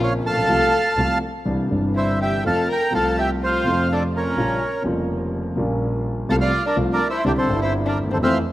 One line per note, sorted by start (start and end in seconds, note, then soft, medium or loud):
0.00 0.24 A#1 loud
0.00 0.35 A#1 medium
0.00 0.45 A#2 medium
0.00 0.44 C#3 medium
0.00 0.45 A#3 medium
0.00 0.46 C4 medium
0.00 0.10 F4 medium
0.00 0.46 F4 medium
0.00 0.13 C#5 medium
0.00 0.14 F5 medium
0.22 0.48 A#1 medium
0.22 1.16 A4 medium
0.22 1.18 A5 loud
0.27 0.36 A1 soft
0.27 1.18 F5 medium
0.37 0.43 A#1 medium
0.43 0.49 B1 medium
0.48 0.69 C2 medium
0.48 0.69 C3 medium
0.48 0.69 F3 medium
0.48 0.69 A3 medium
0.48 0.69 F4 medium
0.96 1.17 C2 medium
0.96 1.17 C3 medium
0.96 1.18 F3 medium
0.96 1.18 A3 medium
0.96 1.18 F4 medium
1.45 1.66 C2 medium
1.45 1.66 C3 medium
1.45 1.66 E3 medium
1.45 1.66 G3 medium
1.45 1.66 D4 medium
1.69 2.41 G1 medium
1.69 2.41 G2 medium
1.69 2.40 C3 medium
1.69 2.41 E3 medium
1.69 2.42 G3 medium
1.69 2.42 D4 medium
1.95 2.18 E4 medium
1.95 2.19 C5 medium
1.95 2.20 E5 medium
2.19 2.42 G4 medium
2.19 2.44 E5 medium
2.19 2.44 G5 medium
2.44 2.65 F2 medium
2.44 2.65 C3 medium
2.44 2.65 F3 medium
2.44 2.65 A3 medium
2.44 2.65 F4 medium
2.44 2.67 A4 medium
2.44 2.68 F5 medium
2.44 2.69 A5 medium
2.68 2.91 A#4 medium
2.68 2.93 G5 medium
2.73 2.93 A#5 medium
2.91 3.62 C2 medium
2.91 2.92 C3 medium
2.91 3.62 C3 medium
2.91 3.62 F3 medium
2.91 3.63 A3 medium
2.91 3.63 F4 medium
2.91 3.16 A4 medium
2.91 3.16 F5 medium
2.95 3.19 A5 medium
3.18 3.29 G4 medium
3.18 3.30 E5 medium
3.18 3.31 G5 medium
3.43 3.88 F4 medium
3.43 3.88 C5 medium
3.43 3.94 F5 medium
3.64 4.35 F2 medium
3.64 4.33 C3 medium
3.64 4.35 F3 medium
3.64 4.35 A3 medium
3.68 4.36 F4 medium
3.92 4.03 D4 medium
3.92 4.03 A4 medium
3.92 4.04 D5 medium
4.15 4.82 C#4 medium
4.15 4.83 A#4 medium
4.15 4.83 C#5 medium
4.37 4.58 A#1 medium
4.37 4.58 A#2 medium
4.37 4.58 C#3 medium
4.37 4.58 G3 medium
4.37 4.58 A#3 medium
4.37 4.58 F4 medium
4.82 5.53 F1 medium
4.82 5.54 F1 medium
4.82 5.53 F2 medium
4.82 5.52 C#3 medium
4.82 5.53 G3 medium
4.82 5.54 A#3 medium
4.86 5.54 F4 medium
5.55 6.25 A#1 medium
5.55 6.26 A#1 loud
5.55 6.25 A#2 medium
5.55 6.24 C#3 medium
5.55 6.25 G3 medium
5.55 6.26 A#3 medium
5.55 6.26 F4 medium
6.29 6.49 C2 medium
6.29 6.50 C2 loud
6.29 6.49 C3 medium
6.29 6.49 F3 medium
6.29 6.49 A3 medium
6.29 6.49 F4 medium
6.29 6.36 A4 medium
6.29 6.36 F5 medium
6.29 6.35 A5 loud
6.41 6.64 F4 medium
6.41 6.64 D5 medium
6.41 6.66 F5 loud
6.66 6.77 D4 medium
6.66 6.77 A#4 medium
6.66 6.77 D5 medium
6.76 6.97 C2 medium
6.76 6.97 C2 loud
6.76 6.97 C3 medium
6.76 6.97 F3 medium
6.76 6.97 A3 medium
6.76 6.97 F4 medium
6.92 7.08 D4 medium
6.92 7.08 A#4 medium
6.92 7.08 D5 loud
7.09 7.24 E4 medium
7.09 7.25 C5 medium
7.09 7.24 E5 medium
7.24 7.45 C2 medium
7.24 7.45 C3 medium
7.24 7.45 D3 medium
7.24 7.45 G3 medium
7.24 7.45 C4 medium
7.24 7.31 D4 medium
7.24 7.45 E4 medium
7.24 7.32 G4 medium
7.24 7.32 D5 medium
7.37 7.59 C4 medium
7.37 7.60 A4 medium
7.37 7.60 C5 medium
7.48 7.97 G1 medium
7.48 8.19 G1 loud
7.48 8.19 G2 medium
7.48 8.18 D3 medium
7.48 8.18 G3 medium
7.48 8.19 C4 medium
7.52 8.20 E4 medium
7.61 7.72 E4 medium
7.61 7.74 C5 medium
7.61 7.73 E5 medium
7.86 7.97 D4 medium
7.86 7.99 A#4 medium
7.86 7.98 D5 medium
7.97 8.20 D#2 medium
8.04 8.10 D2 medium
8.09 8.15 D#2 medium
8.09 8.16 C4 medium
8.13 8.22 E2 medium
8.13 8.18 A4 medium
8.13 8.18 C5 medium
8.21 8.39 F2 loud
8.21 8.38 E3 medium
8.21 8.38 F3 medium
8.21 8.38 A3 medium
8.21 8.38 C4 medium
8.21 8.38 C5 medium
8.21 8.38 E5 loud
8.21 8.38 F5 loud